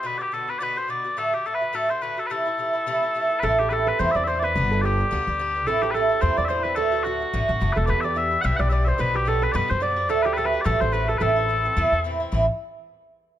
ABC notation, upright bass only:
X:1
M:4/4
L:1/16
Q:"Swing" 1/4=216
K:Ador
V:1 name="Upright bass" clef=bass
z16 | z16 | z16 | A,,,8 E,, z E,,6 |
G,,,8 D,, z D,,6 | A,,,8 E,, z E,,6 | D,,8 A,,, z A,,,2 F,,,2 E,,,2 | E,,8 B,,, z B,,,6 |
B,,,8 F,, z F,,6 | D,,8 A,,, z A,,,6 | A,,,8 E,, z E,,6 | A,,,2 z12 z2 |]